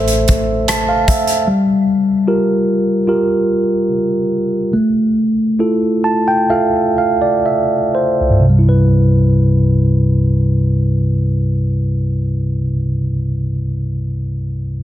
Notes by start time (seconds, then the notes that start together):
Already playing: A1 A3 A4 C5 E5
0.08 closed hi-hat
0.28 kick, closed hi-hat
0.68 A5, cross-stick, closed hi-hat
0.89 F5
1.08 E5, kick, closed hi-hat
1.27 closed hi-hat
1.47 G3
2.28 F4 G4 A#4
3.07 F4 G4 A#4
4.73 A3
5.59 E4 F4 A4
6.04 A5
6.28 G5
6.50 F4 A4 E5 F5
6.98 F5
7.22 D5
7.46 E5
7.95 C5
8.20 C2
8.30 G2
8.40 C3
8.49 G3
8.59 E4
8.69 B4